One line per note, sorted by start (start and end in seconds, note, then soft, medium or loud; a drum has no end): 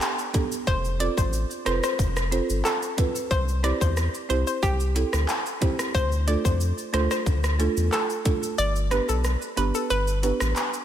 0.01 clap loud
0.01 shaker medium
0.19 shaker medium
0.19 shaker soft
0.34 0.48 B3 medium
0.34 0.48 D4 medium
0.34 0.48 G4 medium
0.34 0.48 A4 loud
0.34 kick loud
0.34 closed hi-hat medium
0.34 shaker medium
0.52 shaker medium
0.67 1.09 F1 loud
0.67 0.82 C5 loud
0.67 kick loud
0.67 shaker medium
0.85 shaker soft
1.00 1.14 C4 medium
1.00 1.14 F4 medium
1.00 1.14 A4 medium
1.00 1.14 C5 medium
1.00 1.15 D5 medium
1.00 closed hi-hat medium
1.00 shaker medium
1.18 1.45 A1 medium
1.18 1.31 C5 medium
1.18 kick medium
1.18 shaker medium
1.33 shaker medium
1.51 shaker soft
1.51 shaker medium
1.65 1.80 F1 medium
1.65 1.80 C4 medium
1.65 1.80 F4 medium
1.65 1.80 A4 medium
1.65 1.80 B4 medium
1.65 1.81 C5 medium
1.65 cross-stick loud
1.65 closed hi-hat medium
1.65 shaker medium
1.83 1.97 C5 medium
1.83 cross-stick loud
1.83 shaker medium
1.99 2.41 F1 loud
1.99 kick medium
1.99 shaker medium
2.16 cross-stick medium
2.16 shaker soft
2.16 shaker medium
2.31 2.46 C4 medium
2.31 2.46 F4 medium
2.31 2.46 A4 medium
2.31 2.46 C5 loud
2.31 closed hi-hat medium
2.31 shaker medium
2.49 2.62 G1 medium
2.49 shaker medium
2.65 3.12 A4 medium
2.65 clap loud
2.65 shaker medium
2.82 shaker soft
2.82 shaker medium
2.97 3.12 C4 medium
2.97 3.12 F4 medium
2.97 3.12 A4 medium
2.97 3.12 B4 medium
2.97 kick loud
2.97 closed hi-hat medium
2.97 shaker medium
3.15 shaker medium
3.31 3.73 C2 loud
3.31 3.46 C5 loud
3.31 kick loud
3.31 shaker medium
3.48 shaker medium
3.48 shaker soft
3.63 3.77 C4 medium
3.63 3.78 E4 medium
3.63 3.78 G4 medium
3.63 3.78 C5 medium
3.63 3.79 D5 medium
3.63 cross-stick medium
3.63 closed hi-hat medium
3.63 shaker medium
3.81 4.09 E2 loud
3.81 3.95 C5 medium
3.81 kick medium
3.81 shaker medium
3.97 cross-stick medium
3.97 shaker medium
4.14 shaker soft
4.14 shaker medium
4.29 4.44 C2 medium
4.29 4.43 C4 medium
4.29 4.44 E4 medium
4.29 4.44 G4 medium
4.29 4.45 C5 medium
4.29 4.44 C5 medium
4.29 closed hi-hat medium
4.29 shaker medium
4.47 4.61 C5 medium
4.47 shaker medium
4.63 5.04 C2 loud
4.63 5.10 G4 loud
4.63 kick loud
4.63 shaker medium
4.80 shaker medium
4.80 shaker soft
4.95 5.09 C4 medium
4.95 5.10 E4 medium
4.95 5.10 G4 medium
4.95 5.10 A4 medium
4.95 closed hi-hat medium
4.95 high timbale medium
4.95 shaker medium
5.13 5.26 D2 medium
5.13 cross-stick loud
5.13 shaker medium
5.29 clap loud
5.29 shaker medium
5.46 shaker medium
5.46 shaker soft
5.61 5.75 C4 medium
5.61 5.76 E4 medium
5.61 5.76 G4 medium
5.61 5.76 C5 loud
5.61 kick loud
5.61 closed hi-hat medium
5.61 shaker medium
5.79 cross-stick loud
5.79 shaker medium
5.95 6.36 D2 loud
5.95 6.10 C5 loud
5.95 kick loud
5.95 shaker medium
6.12 shaker soft
6.12 shaker medium
6.27 6.41 A3 medium
6.27 6.41 D4 medium
6.27 6.42 F4 medium
6.27 6.42 A4 medium
6.27 6.43 D5 medium
6.27 closed hi-hat medium
6.27 shaker medium
6.45 6.72 F2 loud
6.45 6.59 C5 medium
6.45 kick medium
6.45 shaker medium
6.60 shaker medium
6.78 shaker medium
6.93 7.08 D2 loud
6.93 7.07 A3 medium
6.93 7.07 D4 medium
6.93 7.08 F4 medium
6.93 7.08 A4 medium
6.93 7.09 C5 medium
6.93 cross-stick loud
6.93 closed hi-hat medium
6.93 shaker medium
7.11 7.24 C5 medium
7.11 cross-stick loud
7.11 shaker medium
7.26 7.68 D2 loud
7.26 kick medium
7.26 shaker medium
7.44 cross-stick loud
7.44 shaker medium
7.59 7.73 A3 medium
7.59 7.73 D4 medium
7.59 7.74 F4 medium
7.59 7.74 A4 loud
7.59 closed hi-hat medium
7.59 shaker medium
7.77 7.90 E2 loud
7.77 shaker medium
7.92 8.40 A4 medium
7.92 clap medium
7.92 shaker medium
8.10 shaker medium
8.10 shaker soft
8.25 8.39 A3 medium
8.25 8.39 D4 medium
8.25 8.39 F4 medium
8.25 8.40 A4 medium
8.25 kick loud
8.25 closed hi-hat medium
8.25 shaker medium
8.43 shaker medium
8.58 9.00 G1 loud
8.58 8.73 D5 loud
8.58 shaker medium
8.76 shaker soft
8.76 shaker medium
8.91 9.05 B3 medium
8.91 9.05 D4 medium
8.91 9.05 G4 medium
8.91 9.06 B4 medium
8.91 cross-stick medium
8.91 closed hi-hat medium
8.91 shaker medium
9.09 9.36 B1 medium
9.09 9.22 A4 medium
9.09 shaker medium
9.24 cross-stick medium
9.24 shaker medium
9.42 shaker medium
9.57 9.72 G1 loud
9.57 9.71 B3 medium
9.57 9.71 D4 medium
9.57 9.71 G4 medium
9.57 9.72 B4 medium
9.57 closed hi-hat medium
9.57 shaker medium
9.75 9.88 A4 medium
9.75 shaker medium
9.90 10.32 G1 loud
9.90 10.38 B4 loud
9.90 shaker medium
10.07 shaker medium
10.07 shaker soft
10.23 10.37 B3 medium
10.23 10.37 D4 medium
10.23 10.37 G4 medium
10.23 10.38 B4 medium
10.23 closed hi-hat medium
10.23 high timbale medium
10.23 shaker medium
10.40 10.54 A1 loud
10.40 cross-stick loud
10.40 shaker medium
10.56 clap medium
10.56 shaker medium
10.73 shaker medium
10.73 shaker soft